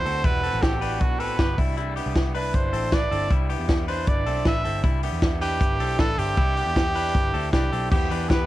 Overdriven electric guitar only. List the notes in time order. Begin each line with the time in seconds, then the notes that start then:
0.04 E3 G3 B3 F#4
0.23 E2 B2 E3 G3 B3 F#4
0.43 E3 G3 B3 F#4
0.62 E3 G3 B3 F#4
0.81 E3 G3 B3 F#4
1.00 E2 B2 E3 G3 B3 F#4
1.19 E3 G3 B3 F#4
1.38 E3 G3 B3 F#4
1.57 G3 D4 E4
1.76 C3 E3 G3 D4 E4
1.95 G3 D4 E4
2.14 E3 G3 D4 E4
2.33 G3 D4 E4
2.53 C3 E3 G3 D4 E4
2.72 G3 D4 E4
2.90 E3 G3 D4 E4
3.10 G3 D4 E4
3.29 C3 E3 G3 D4 E4
3.49 G3 D4 E4
3.68 E3 G3 D4 E4
3.87 G3 D4 E4
4.07 C3 E3 G3 D4 E4
4.25 G3 D4 E4
4.45 E3 G3 D4 E4
4.64 G3 D4 E4
4.84 C3 E3 G3 D4 E4
5.02 G3 D4 E4
5.21 E3 G3 D4 E4
5.40 G3 D4 E4
5.60 C3 E3 G3 D4 E4
5.79 G3 D4 E4
5.98 E3 G3 D4 E4
6.18 G3 D4 E4
6.37 C3 E3 G3 D4 E4
6.56 G3 D4 E4
6.75 E3 G3 D4 E4
6.95 G3 D4 E4
7.14 C3 E3 G3 D4 E4
7.34 G3 D4 E4
7.52 E3 G3 D4 E4
7.71 G3 D4 E4
7.91 E2 B2 E3 G3 B3 E4
8.10 E3 G3 B3 E4
8.29 E2 B2 E3 G3 B3 E4